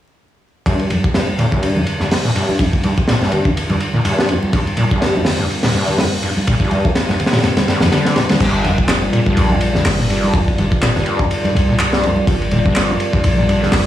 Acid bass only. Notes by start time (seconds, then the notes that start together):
0.66 G2
0.90 F2
1.14 G2
1.39 A#2
1.53 G2
1.77 F2
2.01 G2
2.25 A#2
2.36 G2
2.60 F2
2.84 G2
3.08 A#2
3.21 G2
3.46 F2
3.70 G2
3.94 A#2
4.05 G2
4.29 F2
4.53 G2
4.77 A#2
4.91 G2
5.15 F2
5.39 G2
5.64 A#2
5.74 G2
5.99 F2
6.23 G2
6.47 A#2
6.61 G2
6.85 F2
7.09 G2
7.33 A#2
7.44 G2
7.68 G2
7.81 F2
7.92 D3
8.16 G2
8.29 D3
8.40 G2
8.65 F2
8.89 G2
9.13 A#2
9.27 G2
9.51 F2
9.75 G2
9.99 A#2
10.10 G2
10.34 F2
10.59 G2
10.83 A#2
10.96 G2
11.20 F2
11.45 G2
11.69 A#2
11.80 G2
12.04 F2
12.28 G2
12.52 A#2
12.66 G2
12.90 F2
13.14 G2
13.38 A#2
13.48 G2
13.73 F2